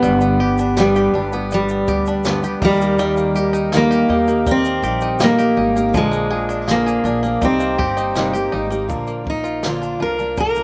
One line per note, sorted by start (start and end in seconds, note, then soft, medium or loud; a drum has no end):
0.00 1.09 G1 loud
0.00 0.40 G2 medium
0.00 0.03 G3 medium
0.00 1.50 G3 medium
0.00 0.20 B3 medium
0.00 0.80 B3 loud
0.00 0.40 G4 medium
0.00 5.91 G4 medium
0.00 2.59 B4 medium
0.00 2.59 D5 medium
0.00 2.59 B5 medium
0.00 shaker medium
0.04 0.40 D3 medium
0.04 0.40 G3 medium
0.04 0.40 B3 medium
0.04 0.41 D4 medium
0.04 0.41 G4 medium
0.21 0.76 B3 medium
0.21 shaker medium
0.40 0.77 G3 medium
0.40 0.78 B3 medium
0.40 0.78 D4 medium
0.40 0.96 G4 medium
0.40 0.78 G4 medium
0.58 0.95 D4 medium
0.58 shaker medium
0.77 1.14 G2 medium
0.77 1.15 D3 medium
0.77 1.13 G3 medium
0.77 1.53 G3 medium
0.77 1.32 B3 medium
0.77 1.14 B3 medium
0.77 1.15 D4 medium
0.77 1.15 G4 medium
0.77 snare loud
0.77 shaker medium
0.96 1.88 G4 medium
0.96 shaker soft
1.14 1.83 G1 loud
1.14 1.32 G3 medium
1.14 1.33 B3 medium
1.14 2.06 D4 medium
1.14 1.33 D4 medium
1.14 1.33 G4 medium
1.33 1.86 G3 soft
1.33 1.69 B3 medium
1.33 1.88 B3 soft
1.33 1.88 D4 medium
1.33 1.88 G4 medium
1.33 shaker soft
1.51 2.63 G3 medium
1.51 shaker medium
1.69 2.24 B3 medium
1.69 shaker medium
1.88 2.58 D2 medium
1.88 2.24 G3 medium
1.88 2.25 B3 medium
1.88 2.25 D4 medium
1.88 2.44 G4 medium
1.88 2.25 G4 medium
1.88 kick medium
1.88 shaker medium
2.06 2.62 D4 medium
2.06 shaker soft
2.24 2.43 G2 medium
2.24 2.43 D3 medium
2.24 2.43 G3 medium
2.24 2.69 B3 medium
2.24 2.43 B3 medium
2.24 2.42 D4 medium
2.24 2.41 G4 medium
2.24 snare loud
2.24 shaker medium
2.43 2.60 G3 soft
2.43 2.62 B3 soft
2.43 2.61 D4 medium
2.43 2.61 G4 medium
2.43 3.36 G4 medium
2.43 shaker medium
2.60 4.05 D#2 loud
2.60 2.80 G3 medium
2.60 2.98 G3 medium
2.60 2.80 A#3 medium
2.60 2.81 D#4 medium
2.60 5.90 A#4 medium
2.60 5.90 D#5 medium
2.60 8.85 A#5 medium
2.60 kick loud
2.60 crash medium
2.64 3.77 G3 medium
2.64 2.79 G4 medium
2.80 3.17 A#3 medium
2.80 2.97 A#3 soft
2.80 2.98 D#4 medium
2.80 2.98 G4 medium
2.80 shaker medium
2.98 3.35 D#3 medium
2.98 3.33 G3 medium
2.98 3.17 G3 loud
2.98 3.35 A#3 medium
2.98 3.35 D#4 medium
2.98 3.36 G4 medium
2.98 shaker medium
3.17 3.72 A#3 medium
3.17 shaker medium
3.35 3.72 G3 medium
3.35 3.73 A#3 medium
3.35 3.72 D#4 medium
3.35 3.90 G4 medium
3.35 3.73 G4 medium
3.35 shaker medium
3.53 4.09 D#4 medium
3.53 shaker medium
3.72 4.09 D#3 medium
3.72 4.07 G3 medium
3.72 4.28 A#3 medium
3.72 4.09 A#3 medium
3.72 4.10 D#4 medium
3.72 4.10 G4 medium
3.72 snare loud
3.72 shaker medium
3.76 4.50 A#3 medium
3.91 4.82 G4 medium
3.91 shaker medium
4.09 4.79 D#2 medium
4.09 4.27 G3 medium
4.09 4.28 A#3 medium
4.09 5.01 D#4 medium
4.09 4.28 D#4 medium
4.09 4.26 G4 medium
4.28 4.66 A#3 medium
4.28 4.83 A#3 soft
4.28 4.84 D#4 medium
4.28 4.83 G4 medium
4.28 shaker soft
4.47 4.66 G3 medium
4.47 kick loud
4.47 shaker medium
4.51 5.25 C4 medium
4.65 5.20 A#3 medium
4.65 shaker medium
4.82 5.53 A#1 loud
4.82 5.19 G3 medium
4.82 5.19 A#3 medium
4.82 5.19 D#4 medium
4.82 5.37 G4 medium
4.82 5.20 G4 medium
4.82 shaker medium
5.01 5.56 D#4 medium
5.01 shaker soft
5.19 5.38 D#3 medium
5.19 5.38 G3 medium
5.19 5.39 A#3 medium
5.19 5.76 A#3 medium
5.19 5.38 D#4 medium
5.19 5.37 G4 medium
5.19 snare loud
5.19 shaker medium
5.24 5.97 A#3 medium
5.38 5.57 A#3 soft
5.38 5.57 D#4 medium
5.38 5.57 G4 medium
5.38 6.01 G4 medium
5.38 shaker medium
5.56 5.91 G#1 medium
5.56 5.75 G3 medium
5.56 5.76 A#3 medium
5.56 6.01 D#4 medium
5.56 5.76 D#4 medium
5.56 5.74 G4 medium
5.75 6.11 A#3 medium
5.75 5.93 A#3 soft
5.75 5.94 D#4 medium
5.75 5.94 G4 medium
5.75 shaker medium
5.93 7.01 A#1 loud
5.93 6.30 A#2 medium
5.93 6.31 D3 medium
5.93 6.30 F3 medium
5.93 7.41 F3 medium
5.93 6.31 A#3 medium
5.93 6.31 D4 medium
5.93 7.40 G#4 medium
5.93 6.32 G#4 medium
5.93 7.41 D5 medium
5.93 7.41 F5 medium
5.93 kick medium
5.93 shaker medium
5.97 6.71 G#3 medium
6.11 6.67 A#3 medium
6.11 shaker soft
6.31 6.67 F3 medium
6.31 6.68 A#3 medium
6.31 6.68 D4 medium
6.31 6.85 G#4 medium
6.31 6.69 G#4 medium
6.49 7.04 D4 medium
6.49 shaker medium
6.68 7.05 A#2 medium
6.68 7.05 D3 medium
6.68 7.03 F3 medium
6.68 7.22 A#3 medium
6.68 7.05 A#3 medium
6.68 7.46 A#3 medium
6.68 7.06 D4 medium
6.68 7.06 G#4 medium
6.68 snare loud
6.68 shaker medium
6.86 7.49 G#4 medium
6.86 shaker soft
7.04 7.38 A#1 loud
7.04 7.23 F3 medium
7.04 7.24 A#3 medium
7.04 7.49 D4 medium
7.04 7.24 D4 medium
7.04 7.22 G#4 medium
7.04 shaker soft
7.23 7.43 F3 soft
7.23 7.60 A#3 medium
7.23 7.42 A#3 soft
7.23 7.43 D4 medium
7.23 7.42 G#4 medium
7.23 shaker soft
7.42 7.76 C2 loud
7.42 7.79 C3 medium
7.42 8.97 G3 medium
7.42 7.77 G3 medium
7.42 7.78 A#3 medium
7.42 8.50 C4 medium
7.42 7.79 D#4 medium
7.42 8.89 G4 medium
7.42 7.80 G4 medium
7.42 8.89 C5 medium
7.42 8.89 D#5 medium
7.42 kick medium
7.42 shaker medium
7.60 8.15 A#3 medium
7.60 shaker medium
7.78 8.49 G1 loud
7.78 8.15 G3 medium
7.78 8.16 A#3 medium
7.78 8.16 D#4 medium
7.78 8.32 G4 medium
7.78 8.16 G4 medium
7.78 kick loud
7.97 8.51 D#4 medium
7.97 shaker soft
8.15 8.34 C3 medium
8.15 8.35 G3 medium
8.15 8.70 A#3 medium
8.15 8.35 A#3 medium
8.15 8.34 D#4 medium
8.15 8.32 G4 medium
8.15 snare loud
8.15 shaker medium
8.33 8.52 A#3 medium
8.33 8.52 D#4 medium
8.33 8.52 G4 medium
8.33 8.97 G4 medium
8.33 shaker medium
8.52 8.87 G#1 medium
8.52 8.71 G3 medium
8.52 8.71 A#3 medium
8.52 8.97 D#4 medium
8.52 8.70 D#4 medium
8.52 8.69 G4 medium
8.70 9.08 A#3 medium
8.70 8.88 A#3 medium
8.70 8.89 D#4 medium
8.70 8.89 G4 medium
8.70 shaker medium
8.88 9.97 A#1 medium
8.88 9.26 A#2 medium
8.88 9.26 D3 medium
8.88 9.23 F3 medium
8.88 9.24 A#3 medium
8.88 9.27 D4 medium
8.88 9.26 A#4 medium
8.88 kick medium
8.88 shaker soft
9.07 9.63 A#3 soft
9.07 shaker soft
9.24 9.63 F3 medium
9.24 9.63 A#3 soft
9.24 9.64 A#4 medium
9.24 kick medium
9.30 9.66 D#4 medium
9.44 9.99 F4 medium
9.44 shaker soft
9.63 10.00 A#2 medium
9.63 10.01 D3 medium
9.63 9.98 F3 medium
9.63 10.56 A#3 medium
9.63 9.99 A#3 medium
9.63 10.00 D4 medium
9.63 10.00 A#4 medium
9.63 snare medium
9.63 shaker medium
9.67 10.02 F4 medium
9.82 10.18 D4 medium
9.82 shaker soft
9.99 10.63 C2 medium
9.99 10.19 F3 medium
9.99 10.19 A#3 medium
9.99 10.18 D4 medium
9.99 10.63 F4 medium
9.99 10.17 A#4 medium
9.99 10.39 A#4 medium
10.18 10.56 F3 soft
10.18 10.55 A#3 soft
10.18 10.63 D4 medium
10.18 10.55 D4 soft
10.18 10.54 A#4 soft
10.18 shaker soft
10.37 10.63 D3 medium
10.37 10.63 A#4 medium
10.37 kick medium
10.37 shaker medium
10.55 10.63 F3 soft
10.55 10.63 A#3 soft
10.55 10.63 D4 soft
10.55 10.63 A#4 medium
10.55 shaker medium